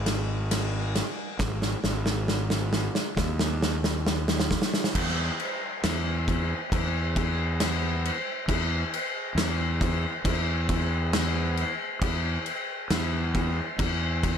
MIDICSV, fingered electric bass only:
0, 0, Header, 1, 2, 480
1, 0, Start_track
1, 0, Tempo, 884956
1, 764, Time_signature, 4, 2, 24, 8
1, 7799, End_track
2, 0, Start_track
2, 0, Title_t, "Fingered electric bass"
2, 0, Program_c, 0, 33
2, 0, Note_on_c, 0, 32, 100
2, 548, Note_off_c, 0, 32, 0
2, 755, Note_on_c, 0, 32, 117
2, 946, Note_off_c, 0, 32, 0
2, 997, Note_on_c, 0, 32, 90
2, 1562, Note_off_c, 0, 32, 0
2, 1717, Note_on_c, 0, 39, 111
2, 2469, Note_off_c, 0, 39, 0
2, 2684, Note_on_c, 0, 40, 119
2, 2871, Note_off_c, 0, 40, 0
2, 3167, Note_on_c, 0, 40, 95
2, 3540, Note_off_c, 0, 40, 0
2, 3643, Note_on_c, 0, 40, 106
2, 4393, Note_off_c, 0, 40, 0
2, 4599, Note_on_c, 0, 40, 110
2, 4787, Note_off_c, 0, 40, 0
2, 5071, Note_on_c, 0, 40, 91
2, 5450, Note_off_c, 0, 40, 0
2, 5556, Note_on_c, 0, 40, 109
2, 6309, Note_off_c, 0, 40, 0
2, 6517, Note_on_c, 0, 40, 110
2, 6706, Note_off_c, 0, 40, 0
2, 6998, Note_on_c, 0, 40, 89
2, 7375, Note_off_c, 0, 40, 0
2, 7477, Note_on_c, 0, 40, 104
2, 7799, Note_off_c, 0, 40, 0
2, 7799, End_track
0, 0, End_of_file